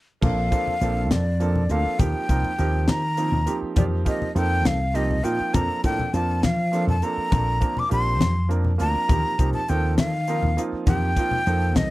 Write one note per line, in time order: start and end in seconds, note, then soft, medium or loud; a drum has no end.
0.21 0.50 A#1 medium
0.21 0.46 F3 medium
0.21 0.46 A#3 medium
0.21 0.46 C4 medium
0.21 0.46 D4 medium
0.21 0.46 A4 medium
0.21 1.13 F5 medium
0.21 kick medium
0.21 crash medium
0.21 high conga medium
0.21 low conga medium
0.51 0.72 F3 medium
0.51 0.72 A#3 medium
0.51 0.72 C4 medium
0.51 0.72 D4 medium
0.51 0.73 A4 medium
0.51 kick medium
0.51 closed hi-hat medium
0.68 low conga medium
0.81 1.11 A#1 medium
0.81 1.22 F3 medium
0.81 1.22 A#3 medium
0.81 1.22 C4 medium
0.81 1.22 D4 medium
0.81 1.23 A4 medium
0.81 closed hi-hat medium
0.97 low conga soft
1.11 1.66 F2 medium
1.11 1.73 D5 medium
1.11 snare medium
1.11 closed hi-hat medium
1.11 high conga medium
1.11 low conga medium
1.40 1.61 F3 medium
1.40 1.61 A#3 medium
1.40 1.61 C4 medium
1.40 1.61 D4 medium
1.40 1.62 A4 medium
1.40 closed hi-hat medium
1.55 low conga medium
1.69 1.83 D2 medium
1.69 1.97 F3 medium
1.69 1.97 A#3 medium
1.69 1.98 C4 medium
1.69 2.00 D4 medium
1.69 2.00 A4 medium
1.69 2.01 F5 medium
1.69 closed hi-hat soft
1.69 low conga soft
1.86 muted slap bass stroke soft
1.99 2.13 D#2 medium
1.99 2.23 F3 medium
1.99 2.23 A#3 medium
1.99 2.23 C4 medium
1.99 2.24 D#4 medium
1.99 2.24 G4 medium
1.99 2.91 G5 medium
1.99 kick medium
1.99 closed hi-hat medium
1.99 high conga medium
1.99 low conga medium
2.28 2.43 C2 medium
2.28 2.49 F3 medium
2.28 2.49 A#3 medium
2.28 2.50 C4 medium
2.28 2.50 D#4 medium
2.28 2.50 A#4 medium
2.28 kick medium
2.28 closed hi-hat medium
2.44 low conga medium
2.58 2.86 D#2 medium
2.58 2.99 F3 medium
2.58 2.99 A#3 medium
2.58 3.00 C4 medium
2.58 3.00 D#4 medium
2.58 3.00 G4 medium
2.58 closed hi-hat medium
2.75 low conga soft
2.87 3.29 D#3 medium
2.87 3.56 A#5 medium
2.87 snare loud
2.87 closed hi-hat medium
2.87 high conga medium
2.87 low conga medium
3.17 3.38 F3 medium
3.17 3.38 A#3 medium
3.17 3.38 C4 medium
3.17 3.38 D#4 medium
3.17 3.39 A#4 medium
3.17 closed hi-hat medium
3.32 3.46 D#2 medium
3.32 low conga medium
3.46 3.74 F3 medium
3.46 3.74 A#3 medium
3.46 3.75 C4 medium
3.46 3.76 D#4 medium
3.46 3.76 G4 medium
3.46 closed hi-hat medium
3.46 low conga soft
3.62 muted slap bass stroke soft
3.76 4.04 F2 medium
3.76 4.00 F3 medium
3.76 4.00 A#3 medium
3.76 4.01 C4 medium
3.76 4.01 D#4 medium
3.76 4.01 G4 medium
3.76 3.84 D5 medium
3.76 kick loud
3.76 closed hi-hat medium
3.76 high conga medium
3.76 low conga medium
4.05 4.26 F3 medium
4.05 4.26 A#3 medium
4.05 4.26 C4 medium
4.05 4.27 D#4 medium
4.05 4.27 G4 medium
4.05 4.35 D#5 medium
4.05 kick medium
4.05 closed hi-hat medium
4.22 low conga medium
4.35 4.66 F2 medium
4.35 4.76 F3 medium
4.35 4.76 A#3 medium
4.35 4.77 C4 medium
4.35 4.77 D#4 medium
4.35 4.77 A4 medium
4.35 4.68 G5 medium
4.35 closed hi-hat medium
4.52 low conga soft
4.65 5.21 C2 medium
4.65 4.97 F5 medium
4.65 snare medium
4.65 closed hi-hat medium
4.65 high conga medium
4.65 low conga medium
4.94 5.15 F3 medium
4.94 5.15 A#3 medium
4.94 5.15 C4 medium
4.94 5.16 D#4 medium
4.94 5.16 G4 medium
4.94 5.25 D#5 medium
4.94 closed hi-hat medium
5.11 low conga medium
5.23 5.38 A#2 medium
5.23 5.52 F3 medium
5.23 5.52 A#3 medium
5.23 5.52 C4 soft
5.23 5.54 D#4 medium
5.23 5.54 F4 medium
5.23 5.56 G5 medium
5.23 closed hi-hat medium
5.40 muted slap bass stroke soft
5.53 5.68 F2 medium
5.53 5.78 F3 medium
5.53 5.78 A#3 medium
5.53 5.78 C4 medium
5.53 5.78 D4 medium
5.53 5.79 A4 medium
5.53 5.84 A#5 medium
5.53 kick loud
5.53 closed hi-hat medium
5.53 high conga medium
5.53 low conga medium
5.84 5.98 A2 medium
5.84 6.04 F3 medium
5.84 6.04 A#3 medium
5.84 6.05 C4 medium
5.84 6.05 D4 medium
5.84 6.05 A4 medium
5.84 6.15 G5 medium
5.84 kick medium
5.84 closed hi-hat medium
5.99 low conga medium
6.13 6.41 F2 medium
6.13 6.54 F3 medium
6.13 6.54 A#3 medium
6.13 6.55 C4 medium
6.13 6.55 D4 medium
6.13 6.55 F4 medium
6.13 6.45 A5 medium
6.13 closed hi-hat medium
6.43 6.84 F3 medium
6.43 6.88 F5 medium
6.43 snare loud
6.43 closed hi-hat medium
6.43 high conga medium
6.43 low conga medium
6.72 6.93 F3 medium
6.72 6.93 A#3 medium
6.72 6.93 C4 medium
6.72 6.94 D4 medium
6.72 6.94 A4 medium
6.72 closed hi-hat medium
6.87 7.01 F2 medium
6.87 7.05 A5 medium
6.87 low conga medium
7.02 7.29 F3 medium
7.02 7.30 A#3 medium
7.02 7.30 C4 medium
7.02 7.31 D4 soft
7.02 7.32 A4 medium
7.02 7.81 A#5 medium
7.02 closed hi-hat medium
7.17 muted slap bass stroke soft
7.31 7.59 A#1 medium
7.31 7.55 F3 medium
7.31 7.55 A#3 medium
7.31 7.56 C4 medium
7.31 7.56 D4 medium
7.31 7.56 A4 medium
7.31 kick medium
7.31 closed hi-hat medium
7.31 high conga medium
7.31 low conga medium
7.60 7.81 F3 medium
7.60 7.81 A#3 medium
7.60 7.82 C4 medium
7.60 7.82 D4 medium
7.60 7.82 A#4 medium
7.60 kick medium
7.60 closed hi-hat medium
7.77 7.92 D6 medium
7.77 low conga medium
7.89 8.21 A#1 medium
7.89 8.30 F3 medium
7.89 8.31 A#3 medium
7.89 8.31 C4 medium
7.89 8.31 D4 medium
7.89 8.32 G4 medium
7.89 8.49 C6 medium
7.89 closed hi-hat medium
8.07 low conga soft
8.21 8.76 F2 medium
8.21 snare medium
8.21 closed hi-hat medium
8.21 high conga medium
8.21 low conga medium
8.49 8.70 F3 medium
8.49 8.70 A#3 medium
8.49 8.70 C4 medium
8.49 8.70 D4 medium
8.49 8.71 A#4 medium
8.49 closed hi-hat medium
8.64 low conga medium
8.78 8.94 D2 medium
8.78 9.07 F3 medium
8.78 9.07 A#3 medium
8.78 9.08 C4 soft
8.78 9.09 D4 medium
8.78 9.09 F4 medium
8.78 9.50 A#5 medium
8.78 closed hi-hat medium
8.78 low conga soft
8.95 muted slap bass stroke soft
9.08 9.23 D#2 medium
9.08 9.32 F3 medium
9.08 9.33 A#3 medium
9.08 9.33 C4 medium
9.08 9.33 D#4 medium
9.08 9.33 G4 medium
9.08 kick medium
9.08 closed hi-hat medium
9.08 high conga medium
9.08 low conga medium
9.38 9.52 C2 medium
9.38 9.59 F3 medium
9.38 9.59 A#3 medium
9.38 9.59 C4 medium
9.38 9.60 D#4 medium
9.38 9.60 G4 medium
9.38 kick medium
9.38 closed hi-hat medium
9.54 9.71 A5 medium
9.54 low conga medium
9.68 9.96 D#2 medium
9.68 10.09 F3 medium
9.68 10.09 A#3 medium
9.68 10.09 C4 medium
9.68 10.10 D#4 medium
9.68 10.10 A4 medium
9.68 9.97 G5 medium
9.68 closed hi-hat medium
9.84 low conga soft
9.98 10.39 D#3 medium
9.98 10.60 F5 medium
9.98 snare loud
9.98 closed hi-hat medium
9.98 high conga medium
9.98 low conga medium
10.28 10.48 F3 medium
10.28 10.48 A#3 medium
10.28 10.48 C4 medium
10.28 10.49 D#4 medium
10.28 10.49 A#4 medium
10.28 closed hi-hat medium
10.42 10.56 D#2 medium
10.42 low conga medium
10.57 10.85 F3 medium
10.57 10.86 A#3 medium
10.57 10.86 C4 medium
10.57 10.87 D#4 medium
10.57 10.87 F4 medium
10.57 closed hi-hat medium
10.57 low conga soft
10.72 muted slap bass stroke soft
10.86 11.14 F2 medium
10.86 11.10 F3 medium
10.86 11.11 A#3 medium
10.86 11.11 C4 medium
10.86 11.11 D#4 medium
10.86 11.11 G4 medium
10.86 11.78 G5 medium
10.86 kick loud
10.86 closed hi-hat medium
10.86 high conga medium
10.86 low conga medium
11.17 11.37 F3 medium
11.17 11.37 A#3 medium
11.17 11.37 C4 medium
11.17 11.38 D#4 medium
11.17 11.38 F4 medium
11.17 kick medium
11.17 closed hi-hat medium
11.31 low conga medium
11.46 11.76 F2 medium
11.46 11.87 F3 medium
11.46 11.87 A#3 medium
11.46 11.87 C4 medium
11.46 11.87 D#4 medium
11.46 11.88 A4 medium
11.46 closed hi-hat medium
11.61 low conga soft
11.76 11.90 C2 medium
11.76 11.90 D#5 medium
11.76 snare loud
11.76 closed hi-hat medium
11.76 high conga medium
11.76 low conga medium